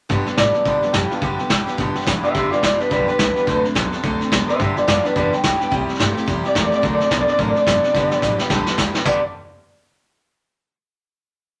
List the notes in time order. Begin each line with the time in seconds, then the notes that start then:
0.09 G2 D3 G3 B3 D4 G4, kick, snare
0.25 G3 B3 D4 G4, snare
0.37 G2 A2 E3 G3 B3 D4 G4 D5, kick, snare, hi-hat pedal
0.54 G3 B3 D4 G4, muted upright bass stroke, snare
0.65 G2 B2 D3 G3 B3 D4 G4, kick, snare
0.81 G3 B3 D4 G4, muted upright bass stroke, snare
0.92 F#2 G2 E3 G3 B3 D4 G4, kick, snare, hi-hat pedal
1.10 G3 B3 D4 F4 G4, muted upright bass stroke, snare
1.21 G2 D3 G3 B3 D4 G4, kick, snare
1.38 G3 B3 D4 G4, muted upright bass stroke, snare
1.49 G2 A2 E3 G3 B3 D4 G4, kick, snare, hi-hat pedal
1.66 G3 B3 D4 G4, snare
1.77 G2 B2 D3 G3 B3 D4 G4, kick, snare
1.95 G3 B3 D4 G4, snare
2.01 snare
2.06 E2 G2 E3 G3 B3 D4 G4, kick, snare, hi-hat pedal
2.23 G3 B3 D4 G4 E5, muted upright bass stroke, snare
2.34 D2 G2 D3 G3 B3 D4 G4 E5, kick, snare
2.51 G3 B3 D4 F4 G4 D5, snare
2.62 C2 G2 E3 G3 B3 D4 F4 G4 D5, kick, snare, hi-hat pedal
2.79 G3 B3 D4 G4 B4, muted upright bass stroke, snare
2.90 B1 G2 D3 G3 B3 D4 G4 B4, kick, snare
3.07 G3 B3 D4 G4 B4, muted upright bass stroke, snare
3.17 C2 G2 E3 G3 B3 D4 G4, kick, snare, hi-hat pedal
3.35 G3 B3 D4 G4, snare
3.47 D2 D3 F#3 A3 C4 D4 A4, kick, snare
3.64 C4 D4 A4, muted upright bass stroke, snare
3.74 B1 D3 F#3 B3 C4 D4 A4, kick, snare, hi-hat pedal
3.92 C4 D4 A4, snare
4.03 C2 D3 F#3 A3 C4 D4 A4, kick, snare
4.20 C4 D4 A4, muted upright bass stroke, snare
4.31 D2 D3 F#3 B3 C4 D4 A4, kick, snare, hi-hat pedal
4.48 C4 D4 A4 C5 E5, muted upright bass stroke, snare
4.59 G2 D3 G3 B3 D4 G4 E5, kick, snare
4.75 G3 B3 D4 F4 G4 D5, snare
4.87 F#2 G2 E3 G3 B3 D4 F4 G4 D5, kick, snare, hi-hat pedal
5.04 G3 B3 D4 G4 B4, muted upright bass stroke, snare
5.15 E2 G2 D3 G3 B3 D4 G4 B4, kick, snare
5.31 G3 B3 D4 G4 G5, muted upright bass stroke, snare
5.43 D2 G2 E3 G3 B3 D4 G4, kick, snare, hi-hat pedal
5.60 G3 B3 D4 G4, muted upright bass stroke, snare
5.70 C2 C3 G3 C4 E4 G4, kick, snare
5.87 C4 E4 G4, muted upright bass stroke, snare
5.94 G3, snare
5.99 G2 C3 A3 C4 E4 G4, kick, snare, hi-hat pedal
6.15 C4 E4 G4, snare
6.26 E2 C3 G3 C4 E4 G4, kick, snare
6.44 C4 E4 G4 D5, muted upright bass stroke, snare
6.54 E2 C3 G3 A3 C4 E4 G4 A#4, kick, snare, hi-hat pedal
6.65 D5
6.71 C4 E4 G4, muted upright bass stroke, snare
6.75 D5
6.82 D2 D3 F#3 A3 C4 D4 A4 A#4, kick, snare
6.93 D5
6.99 C4 D4 A4 D5, muted upright bass stroke, snare
7.10 B1 D3 F#3 B3 C4 D4 A4 A#4, kick, snare, hi-hat pedal
7.21 D5
7.26 C4 D4 A4 D5, muted upright bass stroke, snare
7.38 A1 D3 F#3 A3 C4 D4 A4 A#4, kick, snare
7.49 D5
7.55 C4 D4 A4 D5, muted upright bass stroke, snare
7.66 F#1 D3 F#3 B3 C4 D4 A4, kick, snare, hi-hat pedal
7.83 C4 D4 A4, snare
7.93 G1 G2 D3 G3 B3 D4 G4, kick, snare
8.11 G3 B3 D4 G4, snare
8.21 A1 G2 E3 G3 B3 D4 G4, kick, snare, hi-hat pedal
8.38 G3 B3 D4 G4, muted upright bass stroke, snare
8.50 B1 G2 D3 G3 B3 D4 G4, kick, snare
8.66 G3 B3 D4 G4, muted upright bass stroke, snare
8.77 D2 G2 E3 G3 B3 D4 G4, kick, snare, hi-hat pedal
8.94 G3 B3 D4 G4, muted upright bass stroke, snare
9.04 G1 G2 D3 G3 B3 D4 G4 D5, kick, floor tom, crash